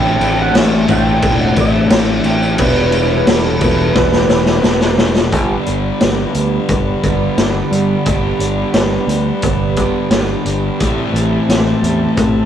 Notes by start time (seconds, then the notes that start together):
Already playing: A1 A2 E3 G3 A3 C4 D4 E4 C5 E5 G5 A5
0.07 tambourine
0.20 A1 G3, tambourine, crash
0.42 F#5
0.55 A1 G3 E5, snare, tambourine, crash
0.75 tambourine
0.88 A1 A2 E3 A3 C4 E4 G5, kick, tambourine, crash
1.07 tambourine
1.22 E1 G3, kick, tambourine, crash
1.40 F#5, tambourine
1.56 A1 G3, kick, tambourine, crash
1.60 E5
1.90 A1 A2 E3 G3 A3 C4 E4, snare, tambourine, crash
1.94 A3
2.24 A1 G3 G4, crash
2.43 tambourine
2.57 E1 E2 B2 E3 G3 B3 E4 B4 B5, kick, crash
2.62 E3
2.78 tambourine
2.92 G3, tambourine, crash
3.11 B4, tambourine
3.27 E1 G3 A4, snare, tambourine, crash
3.47 tambourine
3.60 E1 B2 E3 G3 B3 E4, kick, tambourine, crash
3.65 E2
3.81 tambourine
3.95 E1 G3 B4, kick, snare
4.12 snare, tambourine
4.29 E1 G3, snare, tambourine
4.46 snare, tambourine
4.62 E1 E2 B2 E3 G3 B3 E4, snare, tambourine
4.81 snare
4.98 G3, snare
5.15 snare, tambourine
5.31 G1 G2 D3 G3 B3 G4 D5 F#5 B5, kick, closed hi-hat
5.35 D4
5.66 G1 D4, closed hi-hat
6.00 G1 B3, snare, closed hi-hat
6.35 D2, closed hi-hat
6.69 G1 B3, kick, closed hi-hat
7.03 G1 G2 D3 G3 B3 D4, kick, closed hi-hat
7.37 G1 G2 D3 G3 B3 D4, snare, closed hi-hat
7.71 G2 D4, closed hi-hat
8.06 G1 G2 D3 G3 B3 D4, kick, closed hi-hat
8.39 G1 D4, closed hi-hat
8.74 G1 B3, snare, closed hi-hat
9.07 D2, closed hi-hat
9.42 G1 B3, kick, closed hi-hat
9.76 G2 D3 G3 B3 D4, kick, closed hi-hat
10.10 G1 G2 D3 G3, snare, closed hi-hat
10.14 B3 D4
10.45 G1 D4, closed hi-hat
10.80 A1 A2 E3 G3 A3 C4 E4 C5 E5 A5, kick, closed hi-hat
11.14 A1 E4, closed hi-hat
11.48 A1 C4, snare, closed hi-hat
11.82 E2 G3, closed hi-hat
12.16 A1 C4, kick, closed hi-hat